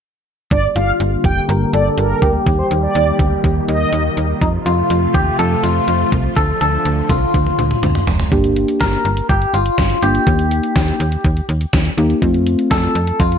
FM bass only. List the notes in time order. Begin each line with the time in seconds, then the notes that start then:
0.51 G1
0.76 G1
1.00 G1
1.24 F1
1.49 G1
1.73 G1
1.98 G1
2.22 D2
2.46 D#2
2.71 D#2
2.95 D#2
3.19 D2
3.44 D#2
3.68 D#2
3.93 D#2
4.17 D#2
4.42 F2
4.66 F2
4.90 F2
5.14 D#2
5.39 F2
5.63 F2
5.88 F2
6.12 C2
6.37 D2
6.61 D2
6.85 D2
7.10 C2
7.34 D2
7.59 D2
7.83 D2
8.07 F1
8.32 G1
8.81 G1
9.05 G1
9.29 G1
9.54 G1
9.78 G1
10.02 G1
10.27 D#2
10.76 D#2
11.00 D#2
11.25 D#2
11.49 D#2
11.73 D#2
11.98 D#2
12.22 F2
12.71 F2
12.95 F2
13.20 F2